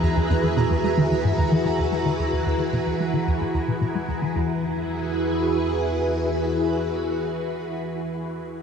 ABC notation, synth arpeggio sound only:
X:1
M:4/4
L:1/16
Q:1/4=111
K:Elyd
V:1 name="Synth arpeggio sound" clef=bass
E,, E,, E,, E, B,, E,, G, D, E,, G,, E,, E, G,, E,, E, D, | E,, E,, E,, E, B,, E,, G, D, E,, G,, E,, B,, B,, G, E,, D, | E,,2 z12 z2 | z16 |]